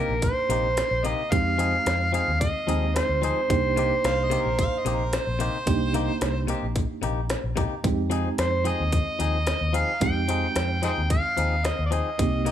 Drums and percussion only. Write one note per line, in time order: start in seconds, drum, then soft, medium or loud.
0.22 kick medium
0.22 closed hi-hat medium
0.50 closed hi-hat medium
0.77 snare loud
0.77 closed hi-hat medium
1.05 closed hi-hat medium
1.32 kick loud
1.32 closed hi-hat medium
1.59 closed hi-hat medium
1.86 snare loud
1.86 closed hi-hat medium
2.14 closed hi-hat medium
2.41 kick medium
2.41 closed hi-hat medium
2.69 closed hi-hat medium
2.96 snare loud
2.96 closed hi-hat medium
3.23 closed hi-hat medium
3.50 kick loud
3.50 closed hi-hat medium
3.77 closed hi-hat medium
4.04 snare loud
4.04 closed hi-hat medium
4.31 closed hi-hat medium
4.59 kick medium
4.59 closed hi-hat medium
4.86 closed hi-hat medium
5.13 snare loud
5.13 closed hi-hat medium
5.40 closed hi-hat medium
5.67 kick loud
5.67 closed hi-hat medium
5.94 closed hi-hat medium
6.21 snare loud
6.21 closed hi-hat medium
6.48 closed hi-hat medium
6.76 kick medium
6.76 closed hi-hat medium
7.03 closed hi-hat medium
7.30 snare loud
7.30 closed hi-hat medium
7.57 kick medium
7.57 closed hi-hat medium
7.84 kick loud
7.84 closed hi-hat medium
8.11 closed hi-hat medium
8.38 snare loud
8.38 closed hi-hat medium
8.65 closed hi-hat medium
8.92 kick medium
8.92 closed hi-hat medium
9.20 closed hi-hat medium
9.47 snare loud
9.47 closed hi-hat medium
9.74 closed hi-hat medium
10.01 kick loud
10.01 closed hi-hat medium
10.29 closed hi-hat medium
10.56 snare loud
10.56 closed hi-hat medium
10.83 closed hi-hat medium
11.10 kick medium
11.10 closed hi-hat medium
11.38 closed hi-hat medium
11.65 snare loud
11.65 closed hi-hat medium
11.92 closed hi-hat medium
12.19 kick loud
12.19 closed hi-hat medium
12.46 closed hi-hat medium